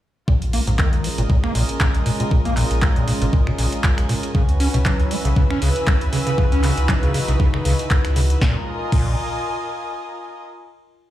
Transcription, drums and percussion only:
0.28 kick loud
0.42 closed hi-hat medium
0.53 open hi-hat loud
0.67 closed hi-hat medium
0.79 kick loud
0.79 clap loud
0.93 closed hi-hat soft
1.04 open hi-hat medium
1.18 closed hi-hat medium
1.30 kick loud
1.44 finger snap medium
1.55 open hi-hat loud
1.69 closed hi-hat medium
1.80 kick loud
1.80 clap loud
1.95 closed hi-hat medium
2.06 open hi-hat medium
2.20 closed hi-hat medium
2.31 kick loud
2.45 closed hi-hat medium
2.57 clap soft
2.57 open hi-hat loud
2.71 closed hi-hat medium
2.82 kick loud
2.82 clap loud
2.96 closed hi-hat soft
3.08 open hi-hat medium
3.22 closed hi-hat medium
3.33 kick loud
3.47 finger snap medium
3.58 open hi-hat loud
3.72 closed hi-hat medium
3.84 kick loud
3.84 clap loud
3.98 finger snap medium
3.98 closed hi-hat medium
4.09 open hi-hat medium
4.23 closed hi-hat medium
4.35 kick loud
4.49 closed hi-hat soft
4.60 open hi-hat loud
4.74 closed hi-hat medium
4.85 kick loud
4.85 clap loud
5.00 closed hi-hat soft
5.11 open hi-hat loud
5.25 closed hi-hat medium
5.36 kick loud
5.50 finger snap medium
5.62 open hi-hat loud
5.76 closed hi-hat medium
5.87 kick loud
5.87 clap loud
6.01 closed hi-hat medium
6.13 open hi-hat medium
6.27 closed hi-hat medium
6.38 kick loud
6.52 closed hi-hat soft
6.64 clap soft
6.64 open hi-hat loud
6.78 closed hi-hat medium
6.89 kick loud
6.89 clap loud
7.03 closed hi-hat soft
7.14 open hi-hat loud
7.28 closed hi-hat medium
7.40 kick loud
7.54 finger snap medium
7.65 open hi-hat loud
7.79 closed hi-hat medium
7.91 kick loud
7.91 clap loud
8.05 finger snap medium
8.05 closed hi-hat medium
8.16 open hi-hat medium
8.30 closed hi-hat medium
8.42 kick loud
8.42 snare medium
8.92 kick loud
8.92 crash medium

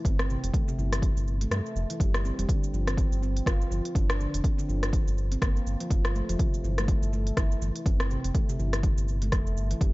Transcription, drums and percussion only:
0.05 kick loud
0.05 closed hi-hat soft
0.05 shaker medium
0.19 cross-stick medium
0.19 shaker soft
0.30 shaker medium
0.44 closed hi-hat medium
0.44 shaker medium
0.54 kick loud
0.54 closed hi-hat soft
0.54 shaker medium
0.68 shaker medium
0.79 shaker soft
0.93 cross-stick medium
0.93 closed hi-hat medium
0.93 shaker medium
1.02 kick loud
1.02 closed hi-hat soft
1.02 shaker medium
1.17 shaker medium
1.28 shaker medium
1.41 closed hi-hat medium
1.41 shaker soft
1.51 cross-stick medium
1.51 closed hi-hat soft
1.51 shaker medium
1.66 shaker soft
1.76 shaker medium
1.90 closed hi-hat medium
1.90 shaker soft
2.00 kick loud
2.00 closed hi-hat soft
2.00 shaker medium
2.14 cross-stick medium
2.14 shaker medium
2.25 shaker medium
2.39 closed hi-hat medium
2.39 shaker medium
2.49 kick loud
2.49 closed hi-hat soft
2.49 shaker medium
2.64 shaker medium
2.74 shaker medium
2.87 cross-stick medium
2.87 closed hi-hat medium
2.87 shaker medium
2.98 kick loud
2.98 closed hi-hat soft
2.98 shaker medium
3.12 shaker medium
3.23 shaker medium
3.37 closed hi-hat medium
3.37 shaker medium
3.46 kick loud
3.46 cross-stick medium
3.46 closed hi-hat soft
3.46 shaker medium
3.61 shaker medium
3.72 shaker medium
3.85 closed hi-hat medium
3.85 shaker soft
3.95 kick loud
3.95 closed hi-hat soft
3.95 shaker medium
4.10 cross-stick loud
4.10 shaker medium
4.20 shaker medium
4.34 closed hi-hat medium
4.34 shaker loud
4.44 kick loud
4.44 closed hi-hat soft
4.44 shaker medium
4.59 shaker loud
4.69 shaker medium
4.83 cross-stick medium
4.83 closed hi-hat medium
4.83 shaker medium
4.93 kick loud
4.93 closed hi-hat soft
4.93 shaker medium
5.08 shaker medium
5.18 shaker medium
5.32 closed hi-hat medium
5.32 shaker medium
5.42 kick loud
5.42 cross-stick medium
5.42 closed hi-hat soft
5.42 shaker medium
5.57 shaker medium
5.67 shaker medium
5.80 closed hi-hat medium
5.80 shaker medium
5.91 kick loud
5.91 closed hi-hat soft
5.91 shaker medium
6.05 cross-stick medium
6.05 shaker medium
6.15 shaker medium
6.29 closed hi-hat medium
6.29 shaker loud
6.39 kick loud
6.39 closed hi-hat soft
6.39 shaker medium
6.54 shaker medium
6.64 shaker medium
6.78 cross-stick medium
6.78 closed hi-hat medium
6.78 shaker medium
6.88 kick loud
6.88 closed hi-hat soft
6.88 shaker medium
7.03 shaker loud
7.13 shaker medium
7.27 closed hi-hat soft
7.27 shaker medium
7.37 kick loud
7.37 cross-stick medium
7.37 closed hi-hat soft
7.37 shaker medium
7.52 shaker medium
7.62 shaker medium
7.76 closed hi-hat soft
7.76 shaker medium
7.86 kick loud
7.86 closed hi-hat soft
7.86 shaker medium
8.00 cross-stick medium
8.00 shaker medium
8.11 shaker medium
8.24 closed hi-hat medium
8.24 shaker loud
8.35 kick loud
8.35 closed hi-hat soft
8.35 shaker medium
8.49 shaker medium
8.59 shaker medium
8.73 cross-stick medium
8.73 closed hi-hat medium
8.73 shaker medium
8.83 kick loud
8.83 closed hi-hat soft
8.83 shaker medium
8.98 shaker loud
9.08 shaker medium
9.22 closed hi-hat medium
9.22 shaker soft
9.32 kick loud
9.32 cross-stick medium
9.32 closed hi-hat soft
9.32 shaker medium
9.47 shaker medium
9.57 shaker medium
9.71 closed hi-hat medium
9.71 shaker medium
9.81 kick loud
9.81 closed hi-hat soft
9.81 shaker medium

